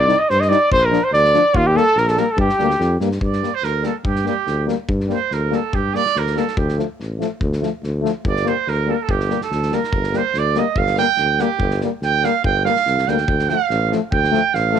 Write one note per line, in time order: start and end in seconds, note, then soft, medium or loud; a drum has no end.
0.00 0.11 C2 loud
0.00 0.20 D5 medium
0.00 0.22 D5 medium
0.07 0.16 G3 medium
0.07 0.15 D#4 medium
0.07 snare soft
0.19 0.31 D#5 medium
0.29 0.53 G2 loud
0.29 0.44 C5 medium
0.29 0.42 C5 loud
0.29 snare soft
0.41 0.51 D#5 medium
0.41 0.52 D#5 medium
0.41 snare soft
0.49 0.57 G3 medium
0.49 0.58 D#4 medium
0.49 0.70 D5 loud
0.49 0.71 D5 medium
0.49 snare soft
0.71 0.94 A#1 loud
0.71 0.87 C5 loud
0.71 0.84 C5 loud
0.71 kick loud
0.82 1.04 A#4 medium
0.82 1.06 A#4 medium
0.91 1.00 F3 medium
0.91 1.00 D4 medium
0.91 snare soft
1.03 1.13 C5 medium
1.12 1.35 D2 loud
1.12 1.58 D5 medium
1.12 1.57 D5 loud
1.12 snare soft
1.25 snare soft
1.34 1.42 F3 medium
1.34 1.43 D4 medium
1.34 snare soft
1.54 1.77 D#2 loud
1.54 1.68 F4 loud
1.54 1.68 F4 medium
1.54 kick loud
1.66 1.78 G4 medium
1.75 1.83 G3 medium
1.75 1.84 A#3 medium
1.75 1.98 A4 medium
1.75 2.00 A4 loud
1.75 snare soft
1.96 2.19 A#1 loud
1.96 2.10 A#4 medium
1.96 snare soft
2.08 2.21 A4 medium
2.08 2.20 A4 medium
2.08 snare soft
2.16 2.24 G3 medium
2.16 2.25 A#3 medium
2.16 2.33 A#4 medium
2.16 2.32 A#4 medium
2.16 snare soft
2.30 2.39 A4 medium
2.37 2.48 G2 loud
2.37 2.98 G4 medium
2.37 kick loud
2.41 2.98 G4 medium
2.49 snare soft
2.58 2.78 D2 medium
2.58 2.66 G3 medium
2.58 2.69 A#3 medium
2.58 snare soft
2.70 snare soft
2.79 2.98 F2 loud
2.79 snare soft
3.00 3.19 G2 medium
3.00 3.09 G3 medium
3.00 3.09 A#3 medium
3.00 snare soft
3.11 snare soft
3.21 3.44 G2 medium
3.21 3.55 D5 medium
3.21 kick medium
3.33 snare soft
3.42 3.50 G3 medium
3.42 3.51 A#3 medium
3.42 snare soft
3.54 3.65 C5 loud
3.63 3.86 D2 medium
3.63 3.84 A#4 medium
3.63 snare soft
3.82 3.91 G3 medium
3.82 3.92 A#3 medium
3.82 3.95 A4 medium
3.82 snare soft
4.05 4.28 G2 medium
4.05 4.25 G4 medium
4.05 kick loud
4.16 snare soft
4.25 4.35 G3 medium
4.25 4.33 A#3 medium
4.25 4.66 G4 medium
4.25 snare soft
4.47 4.70 D2 medium
4.47 snare soft
4.66 4.75 G3 medium
4.66 4.76 A#3 medium
4.66 snare soft
4.89 5.12 G2 medium
4.89 kick loud
5.00 snare soft
5.08 5.17 G3 medium
5.08 5.18 A#3 medium
5.08 snare soft
5.13 5.35 C5 medium
5.31 5.54 D2 medium
5.31 5.56 A#4 medium
5.31 snare soft
5.51 5.59 G3 medium
5.51 5.59 A#3 medium
5.51 5.76 A4 medium
5.51 snare soft
5.73 5.96 G2 medium
5.73 5.96 G4 medium
5.73 kick medium
5.94 6.03 G3 medium
5.94 6.02 A#3 medium
5.94 6.19 D5 loud
5.94 snare soft
6.06 snare soft
6.15 6.38 D2 medium
6.15 6.39 A#4 medium
6.15 snare soft
6.26 snare soft
6.35 6.44 G3 medium
6.35 6.45 A#3 medium
6.35 6.57 A4 medium
6.35 snare soft
6.47 snare soft
6.57 6.80 D2 medium
6.57 6.77 G4 medium
6.57 kick medium
6.68 snare soft
6.77 6.86 F3 medium
6.77 6.86 A3 medium
6.77 snare soft
6.99 7.23 A1 medium
6.99 snare soft
7.19 7.27 F3 medium
7.19 7.28 A3 medium
7.19 snare soft
7.41 7.64 D2 medium
7.41 kick medium
7.53 snare soft
7.61 7.70 F3 medium
7.61 7.70 A3 medium
7.61 snare soft
7.83 8.06 D2 medium
7.83 snare soft
8.02 8.12 F3 medium
8.02 8.11 A3 medium
8.02 snare soft
8.25 8.48 G1 loud
8.25 8.49 D5 medium
8.25 kick medium
8.36 snare soft
8.44 8.55 G3 medium
8.44 8.53 A#3 medium
8.44 8.70 C5 medium
8.44 snare soft
8.67 8.90 D2 medium
8.67 8.91 A#4 medium
8.67 snare soft
8.86 8.95 G3 medium
8.86 8.96 A#3 medium
8.86 8.95 A4 medium
8.94 9.03 A#4 medium
9.02 9.12 A4 medium
9.09 9.32 G1 medium
9.09 9.42 G4 medium
9.09 kick loud
9.20 snare soft
9.29 9.38 G3 medium
9.29 9.38 A#3 medium
9.29 snare soft
9.41 9.76 A4 medium
9.41 snare soft
9.51 9.74 D2 medium
9.51 snare soft
9.63 snare soft
9.71 9.80 G3 medium
9.71 9.81 A#3 medium
9.71 10.18 A#4 medium
9.71 snare soft
9.83 snare soft
9.93 10.16 G1 medium
9.93 kick loud
10.03 snare soft
10.13 10.22 G3 medium
10.13 10.22 A#3 medium
10.13 10.40 C5 loud
10.13 snare soft
10.34 10.58 D2 medium
10.34 snare soft
10.38 10.60 D5 loud
10.55 10.64 G3 medium
10.55 10.65 A#3 medium
10.55 10.79 D#5 medium
10.55 snare soft
10.76 11.00 G1 loud
10.76 10.98 F5 loud
10.76 kick medium
10.87 snare soft
10.96 11.06 G3 medium
10.96 11.06 A#3 medium
10.96 11.42 G5 loud
10.96 snare soft
11.17 11.42 D2 medium
11.17 snare soft
11.39 11.47 G3 medium
11.39 11.48 A#3 medium
11.39 11.82 G4 medium
11.39 snare soft
11.60 11.83 G1 loud
11.60 kick medium
11.70 snare soft
11.81 11.90 G3 medium
11.81 11.90 A#3 medium
11.81 snare soft
12.02 12.25 D2 medium
12.02 12.26 G5 loud
12.02 snare soft
12.23 12.31 G3 medium
12.23 12.33 A#3 medium
12.23 12.44 F5 medium
12.23 snare soft
12.44 12.67 G1 medium
12.44 12.64 G5 medium
12.44 kick medium
12.64 12.73 G3 medium
12.64 12.74 A#3 medium
12.64 13.10 F5 loud
12.64 snare soft
12.76 snare soft
12.86 13.05 C2 medium
12.86 snare soft
12.98 snare soft
13.07 13.26 D2 medium
13.07 13.15 G3 medium
13.07 13.17 A#3 medium
13.07 13.51 G5 medium
13.07 snare soft
13.18 snare soft
13.28 13.51 D2 medium
13.28 kick medium
13.39 snare soft
13.49 13.57 F3 medium
13.49 13.58 A3 medium
13.49 13.91 F5 loud
13.49 snare soft
13.70 13.93 A1 loud
13.70 snare soft
13.90 13.99 F3 medium
13.90 14.00 A3 medium
13.90 snare soft
14.11 14.35 D2 medium
14.11 14.55 G5 loud
14.11 kick medium
14.24 snare soft
14.32 14.41 F3 medium
14.32 14.40 A3 medium
14.32 snare soft
14.54 14.77 A1 loud
14.54 14.79 F5 medium
14.54 snare soft
14.73 14.79 F3 medium
14.73 14.79 A3 medium
14.73 snare soft